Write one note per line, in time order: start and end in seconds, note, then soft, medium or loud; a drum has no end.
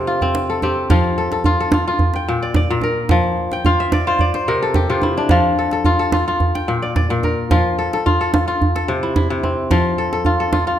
0.00 0.95 C3 medium
0.00 0.22 C4 medium
0.00 0.24 G4 medium
0.00 0.49 A4 medium
0.00 0.56 A#4 medium
0.07 0.90 F4 medium
0.07 djembe slap soft
0.21 0.63 C4 medium
0.21 djembe slap soft
0.21 djembe bass medium
0.35 djembe slap medium
0.49 1.17 A4 medium
0.49 djembe slap soft
0.62 2.43 C4 medium
0.62 2.04 G4 medium
0.62 djembe tone medium
0.90 2.05 F3 medium
0.90 1.45 F4 medium
0.90 djembe slap medium
0.90 djembe bass medium
1.04 djembe slap soft
1.18 1.32 A4 medium
1.18 djembe slap soft
1.32 1.60 A4 medium
1.32 djembe slap medium
1.44 1.73 F4 medium
1.44 djembe bass medium
1.60 2.34 A4 medium
1.72 1.87 F4 medium
1.72 djembe slap medium
1.72 djembe tone medium
1.88 3.39 F4 medium
1.99 djembe slap soft
1.99 djembe bass medium
2.14 3.09 G5 medium
2.14 djembe slap medium
2.27 2.69 A#2 medium
2.27 djembe slap soft
2.43 2.56 D5 medium
2.54 3.67 D5 medium
2.54 djembe slap medium
2.54 djembe bass medium
2.69 3.16 A#2 medium
2.69 djembe slap soft
2.81 4.11 A#4 medium
2.81 djembe tone medium
3.09 4.26 F3 medium
3.09 djembe slap medium
3.09 djembe bass medium
3.24 djembe slap soft
3.37 djembe slap soft
3.52 4.46 G5 medium
3.52 djembe slap soft
3.65 4.07 F4 medium
3.65 4.66 F5 medium
3.65 djembe bass medium
3.80 4.13 E5 medium
3.92 4.20 D5 medium
3.92 djembe slap medium
3.92 djembe tone medium
4.07 4.89 F4 medium
4.07 4.34 C5 medium
4.19 5.31 D5 medium
4.19 djembe slap soft
4.19 djembe bass medium
4.34 5.53 C5 medium
4.34 djembe slap medium
4.47 4.88 C3 medium
4.47 5.65 A#4 medium
4.47 djembe slap soft
4.62 5.58 A4 medium
4.74 6.17 G4 medium
4.74 djembe slap medium
4.74 djembe bass medium
4.89 5.36 C3 medium
4.89 5.30 F4 medium
4.89 djembe slap soft
5.02 5.37 E4 medium
5.02 djembe tone medium
5.17 6.85 D4 medium
5.29 6.46 F3 medium
5.29 5.85 F4 medium
5.29 djembe slap medium
5.29 djembe bass medium
5.44 djembe slap soft
5.57 5.72 A4 medium
5.57 djembe slap soft
5.71 5.99 A4 medium
5.71 djembe slap soft
5.85 6.13 F4 medium
5.85 djembe bass medium
5.99 6.74 A4 medium
6.12 6.27 F4 medium
6.12 djembe slap medium
6.12 djembe tone medium
6.28 7.51 F4 medium
6.40 djembe slap soft
6.40 djembe bass medium
6.55 7.48 G5 medium
6.55 djembe slap medium
6.68 7.09 A#2 medium
6.68 djembe slap soft
6.82 6.96 D5 medium
6.96 8.07 D5 medium
6.96 djembe slap medium
6.96 djembe bass medium
7.10 7.56 A#2 medium
7.10 djembe slap soft
7.23 7.85 A#4 medium
7.23 djembe tone medium
7.51 8.66 F3 medium
7.51 8.06 F4 medium
7.51 djembe slap medium
7.51 djembe bass medium
7.79 7.93 A4 medium
7.93 8.20 A4 medium
7.93 djembe slap soft
8.06 8.34 F4 medium
8.06 djembe bass medium
8.21 8.75 A4 medium
8.34 8.47 F4 medium
8.34 djembe slap medium
8.34 djembe tone medium
8.48 9.09 F4 medium
8.62 djembe bass medium
8.76 9.98 A4 medium
8.76 djembe slap medium
8.88 9.29 C3 medium
8.88 djembe slap soft
9.03 9.16 E4 medium
9.16 9.77 E4 medium
9.16 djembe slap medium
9.16 djembe bass medium
9.30 9.76 C3 medium
9.30 djembe slap soft
9.43 10.79 C4 medium
9.43 djembe slap soft
9.43 djembe tone medium
9.71 10.79 F3 medium
9.71 10.25 F4 medium
9.71 djembe slap medium
9.71 djembe bass medium
9.85 djembe slap soft
9.98 10.12 A4 medium
9.98 djembe slap soft
10.13 10.40 A4 medium
10.13 djembe slap soft
10.25 10.52 F4 medium
10.25 djembe bass medium
10.40 10.79 A4 medium
10.52 10.67 F4 medium
10.52 djembe slap medium
10.52 djembe tone medium
10.67 10.79 F4 medium